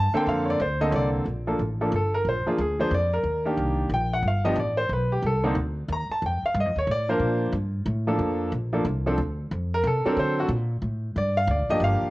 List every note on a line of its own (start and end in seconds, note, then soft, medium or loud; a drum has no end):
0.00 0.13 G2 medium
0.00 0.15 A5 loud
0.14 0.57 D3 medium
0.14 0.57 A#3 medium
0.14 0.57 C4 medium
0.14 0.57 A4 medium
0.14 0.27 G5 medium
0.14 muted upright bass stroke soft
0.27 0.58 F2 medium
0.27 0.48 F5 medium
0.45 0.47 C#5 medium
0.50 0.61 D5 medium
0.60 0.92 D2 medium
0.60 0.81 C5 medium
0.81 1.23 D3 medium
0.81 1.23 A#3 medium
0.81 1.24 C4 medium
0.81 1.24 A4 medium
0.81 0.93 D#5 medium
0.91 1.24 C2 loud
0.91 0.93 C#5 medium
0.96 1.07 D5 medium
1.26 1.58 A#1 medium
1.47 1.58 F3 medium
1.47 1.58 A#3 medium
1.47 1.58 D4 medium
1.47 1.58 A4 medium
1.59 1.91 A1 medium
1.81 1.91 F3 medium
1.81 1.91 A#3 medium
1.81 1.91 D4 medium
1.81 1.91 A4 medium
1.92 2.24 G1 medium
1.92 2.14 A4 medium
2.14 2.25 A#4 medium
2.25 2.44 A#1 medium
2.25 2.47 C5 medium
2.46 2.57 F3 medium
2.46 2.57 A#3 medium
2.46 2.57 D4 medium
2.46 2.59 F4 medium
2.46 2.57 G#4 medium
2.46 muted upright bass stroke soft
2.58 2.90 D2 medium
2.58 2.79 G#4 medium
2.79 2.90 F3 medium
2.79 2.90 A#3 medium
2.79 2.90 D4 medium
2.79 2.90 G#4 medium
2.79 2.92 C5 medium
2.91 3.23 F2 medium
2.91 3.13 D5 medium
3.13 3.43 A#4 medium
3.23 3.56 D#2 medium
3.45 3.88 D#3 medium
3.45 3.88 A#3 medium
3.45 3.88 D4 medium
3.45 3.89 G4 medium
3.57 3.89 C2 medium
3.89 4.22 A#1 medium
3.94 4.12 G5 medium
4.13 4.24 F#5 medium
4.22 4.55 G1 medium
4.28 4.46 F5 medium
4.45 4.55 F3 medium
4.45 4.56 B3 medium
4.45 4.56 D4 medium
4.45 4.56 G4 medium
4.45 4.56 D#5 medium
4.56 4.88 A1 medium
4.56 4.78 D5 medium
4.77 4.89 C5 medium
4.89 5.21 B1 medium
4.89 5.11 B4 medium
5.12 5.23 G4 medium
5.22 5.54 C2 medium
5.22 5.45 A4 medium
5.44 5.54 D3 medium
5.44 5.54 A#3 medium
5.44 5.55 C4 medium
5.44 5.52 D4 medium
5.44 5.55 D#4 medium
5.55 5.87 D2 medium
5.88 6.08 D#2 medium
5.93 6.11 A#5 medium
6.09 6.22 A5 medium
6.09 muted upright bass stroke soft
6.22 6.41 F2 medium
6.26 6.44 G5 medium
6.43 6.56 F5 medium
6.43 muted upright bass stroke soft
6.54 6.65 G2 medium
6.60 6.78 D#5 medium
6.65 6.75 F2 medium
6.76 6.86 D#2 medium
6.76 6.89 C#5 medium
6.87 7.19 A2 medium
6.91 7.10 D5 loud
7.09 7.51 F3 medium
7.09 7.51 A#3 medium
7.09 7.51 D4 medium
7.09 7.40 A#4 medium
7.09 7.51 C5 medium
7.19 7.52 A#2 medium
7.52 7.85 G2 medium
7.86 8.18 A2 medium
8.07 8.50 F3 medium
8.07 8.50 A#3 medium
8.07 8.50 D4 medium
8.07 8.50 A4 medium
8.19 8.51 F2 medium
8.52 8.84 A#1 medium
8.73 8.84 F3 medium
8.73 8.84 A#3 medium
8.73 8.84 D4 medium
8.73 8.84 A4 medium
8.85 9.17 C2 medium
9.06 9.17 F3 medium
9.06 9.17 C4 medium
9.06 9.17 D4 medium
9.06 9.17 A4 medium
9.18 9.50 D2 medium
9.51 9.83 F2 medium
9.74 9.85 A#4 loud
9.84 10.03 C3 medium
9.84 10.05 A4 medium
10.05 10.47 F#3 medium
10.05 10.48 C4 medium
10.05 10.48 D4 medium
10.05 10.48 A4 medium
10.05 10.18 A#4 medium
10.05 muted upright bass stroke soft
10.17 10.48 D3 medium
10.17 10.38 C5 medium
10.40 10.46 F#4 medium
10.49 10.81 A#2 loud
10.82 11.14 A2 medium
11.16 11.47 G2 medium
11.16 11.37 D5 medium
11.37 11.48 F5 loud
11.47 11.60 D2 loud
11.47 11.70 D5 medium
11.59 11.69 A#1 medium
11.69 11.79 G1 medium
11.69 12.10 F3 medium
11.69 12.10 A#3 medium
11.69 12.10 D4 medium
11.69 12.10 G4 medium
11.69 11.81 D#5 loud
11.80 12.00 G1 medium
11.80 12.10 F5 medium
12.02 muted upright bass stroke soft